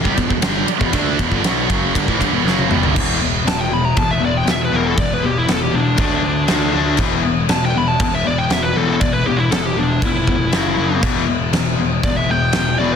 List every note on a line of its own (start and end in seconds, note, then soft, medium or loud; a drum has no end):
0.02 0.17 C2 medium
0.02 0.14 C3 medium
0.02 0.16 G3 medium
0.02 kick medium
0.14 0.30 E1 medium
0.14 0.26 E2 medium
0.14 0.27 B2 medium
0.14 kick medium
0.14 ride medium
0.27 0.41 E1 medium
0.27 0.41 E2 medium
0.27 0.42 B2 medium
0.27 kick medium
0.42 0.66 G1 medium
0.42 0.67 G2 medium
0.42 0.67 D3 loud
0.42 0.68 G3 loud
0.42 snare loud
0.42 ride medium
0.67 muted picked electric bass stroke soft
0.67 muted distorted electric guitar stroke medium
0.67 ride medium
0.78 0.93 E1 medium
0.78 0.91 E2 medium
0.78 0.90 B2 loud
0.78 kick loud
0.91 1.17 D2 loud
0.91 1.17 D3 loud
0.91 1.17 A3 loud
0.91 1.18 D4 loud
0.91 kick loud
0.91 ride medium
1.18 1.31 E1 loud
1.18 1.29 E2 medium
1.18 1.30 B2 loud
1.18 kick loud
1.18 ride medium
1.29 1.42 G1 medium
1.29 1.42 G2 medium
1.29 1.43 D3 medium
1.29 kick medium
1.33 1.44 G2 medium
1.43 1.67 B1 medium
1.43 1.69 B2 medium
1.43 1.69 F#3 loud
1.43 1.69 B3 loud
1.43 snare loud
1.43 ride loud
1.68 1.93 F#1 medium
1.68 1.93 F#2 medium
1.68 1.94 C#3 medium
1.68 1.94 F#3 loud
1.68 kick loud
1.68 ride medium
1.94 2.07 G1 medium
1.94 2.06 G2 medium
1.94 2.06 D3 loud
1.94 kick loud
1.94 ride loud
2.07 2.19 A1 medium
2.07 2.19 A2 medium
2.07 2.19 E3 medium
2.07 kick medium
2.19 2.30 G1 medium
2.19 2.31 G2 medium
2.19 2.31 D3 loud
2.19 kick medium
2.19 ride medium
2.31 2.43 E1 medium
2.31 2.44 E2 medium
2.31 2.45 B2 medium
2.43 2.68 F#1 medium
2.43 2.69 F#2 loud
2.43 2.70 C#3 medium
2.43 2.70 F#3 loud
2.43 snare medium
2.59 high tom medium
2.69 2.81 E1 medium
2.69 2.82 E2 medium
2.69 2.82 B2 medium
2.69 mid tom medium
2.83 2.94 G1 medium
2.83 2.94 G2 medium
2.83 2.95 D3 medium
2.83 floor tom medium
2.95 3.43 E1 medium
2.95 3.19 E2 medium
2.95 3.19 B2 loud
2.95 3.19 E3 medium
2.95 kick loud
2.95 crash loud
2.95 crash medium
3.20 3.43 E2 medium
3.20 3.43 B2 medium
3.45 3.92 E1 medium
3.45 3.68 E2 medium
3.45 3.69 B2 medium
3.45 3.59 A5 loud
3.45 snare loud
3.45 crash medium
3.59 3.71 G5 medium
3.69 3.93 E2 medium
3.69 3.93 B2 medium
3.69 3.85 B5 medium
3.85 3.98 A#5 medium
3.97 4.43 E1 loud
3.97 4.19 E2 medium
3.97 4.19 B2 medium
3.97 4.09 A5 medium
3.97 kick loud
3.97 crash medium
4.11 4.22 E5 medium
4.20 4.43 E2 medium
4.20 4.44 B2 medium
4.25 4.36 D5 medium
4.37 4.48 G5 medium
4.45 4.69 E1 medium
4.45 4.69 E2 medium
4.45 4.69 B2 medium
4.45 snare loud
4.45 crash medium
4.51 4.61 E5 medium
4.65 4.76 B4 medium
4.71 4.95 E1 medium
4.71 4.94 E2 medium
4.71 4.94 B2 loud
4.71 4.96 E3 medium
4.76 4.86 A#4 medium
4.87 4.98 A4 medium
4.95 5.20 E1 loud
4.95 5.19 E2 medium
4.95 5.19 B2 medium
4.95 kick loud
4.95 crash medium
5.00 5.14 D5 medium
5.14 5.24 B4 medium
5.23 5.46 E1 medium
5.23 5.45 E2 medium
5.23 5.45 B2 medium
5.23 5.36 G4 medium
5.38 5.49 E4 medium
5.47 5.71 E1 medium
5.47 5.70 E2 medium
5.47 5.70 B2 medium
5.47 snare loud
5.47 crash medium
5.52 5.63 A4 medium
5.63 5.74 G4 medium
5.71 5.98 E1 medium
5.71 5.95 E2 medium
5.71 5.95 B2 medium
5.75 5.99 D4 medium
5.96 6.44 D2 medium
5.96 6.20 D3 medium
5.96 6.20 A3 medium
5.96 6.21 D4 loud
5.96 6.97 D4 loud
5.96 kick loud
5.96 crash medium
6.21 6.45 D3 medium
6.21 6.45 A3 medium
6.47 6.72 D2 medium
6.47 6.72 D3 medium
6.47 6.72 A3 loud
6.47 6.72 D4 loud
6.47 snare loud
6.47 crash medium
6.73 6.97 D2 medium
6.73 6.97 D3 medium
6.73 6.98 A3 medium
6.73 6.98 D4 loud
6.97 7.45 E1 loud
6.97 7.22 E2 medium
6.97 7.23 B2 loud
6.97 7.23 E3 loud
6.97 kick loud
6.97 crash medium
7.25 7.47 E2 medium
7.25 7.47 B2 medium
7.48 7.95 E1 medium
7.48 7.72 E2 medium
7.48 7.72 B2 medium
7.48 7.62 A5 medium
7.48 snare loud
7.48 crash medium
7.65 7.76 G5 medium
7.76 7.98 E2 medium
7.76 7.98 B2 medium
7.76 7.88 B5 medium
7.88 8.00 A5 medium
8.00 8.46 E1 loud
8.00 8.23 E2 medium
8.00 8.23 B2 medium
8.00 8.13 A5 medium
8.00 kick loud
8.00 crash medium
8.15 8.26 E5 medium
8.24 8.47 E2 medium
8.24 8.47 B2 medium
8.24 8.38 D5 medium
8.38 8.53 G5 medium
8.49 8.73 E1 medium
8.49 8.72 E2 medium
8.49 8.72 B2 medium
8.49 8.63 E5 loud
8.49 snare loud
8.49 crash medium
8.63 8.77 B4 loud
8.74 8.98 E1 medium
8.74 8.98 E2 medium
8.74 8.98 B2 loud
8.74 8.99 E3 loud
8.74 8.88 A4 medium
8.89 9.00 A4 medium
9.00 9.24 E1 medium
9.00 9.24 E2 medium
9.00 9.24 B2 medium
9.00 9.12 D5 loud
9.00 kick loud
9.00 crash medium
9.12 9.25 B4 loud
9.26 9.49 E1 medium
9.26 9.48 E2 medium
9.26 9.49 B2 medium
9.26 9.38 G4 medium
9.37 9.50 E4 medium
9.50 9.73 E1 medium
9.50 9.74 E2 medium
9.50 9.74 B2 medium
9.50 9.66 A4 medium
9.50 snare loud
9.50 crash medium
9.66 9.77 G4 medium
9.76 9.99 E1 medium
9.76 9.99 E2 medium
9.76 9.99 B2 medium
9.76 10.02 D4 medium
10.02 10.48 F1 loud
10.02 10.25 E2 medium
10.02 10.25 B2 medium
10.02 11.01 E4 medium
10.02 kick loud
10.02 crash medium
10.27 10.49 E2 medium
10.27 10.50 B2 medium
10.27 kick medium
10.52 10.75 F#1 medium
10.52 10.75 F#2 loud
10.52 10.76 C#3 loud
10.52 10.76 F#3 loud
10.52 snare loud
10.52 crash medium
10.77 11.03 F#1 medium
10.77 11.01 F#2 medium
10.77 11.01 C#3 medium
10.77 11.01 F#3 medium
11.02 11.49 E1 medium
11.02 11.26 E2 loud
11.02 11.26 B2 loud
11.02 11.27 E3 medium
11.02 kick loud
11.02 crash medium
11.28 11.50 E2 medium
11.28 11.50 B2 medium
11.53 11.99 E1 medium
11.53 11.75 E2 medium
11.53 11.75 B2 medium
11.53 snare loud
11.53 crash medium
11.78 12.00 E2 medium
11.78 12.01 B2 medium
12.03 12.49 E1 medium
12.03 12.26 E2 medium
12.03 12.26 B2 medium
12.03 12.15 D5 loud
12.03 kick loud
12.03 crash medium
12.16 12.30 E5 medium
12.29 12.51 E2 medium
12.29 12.51 B2 medium
12.29 12.78 G5 loud
12.53 12.76 E1 medium
12.53 12.76 E2 medium
12.53 12.76 B2 medium
12.53 snare loud
12.53 crash medium
12.78 12.96 E1 medium
12.78 12.96 E2 medium
12.78 12.96 B2 medium
12.78 12.96 E3 medium
12.78 12.92 D5 medium
12.92 12.96 B4 medium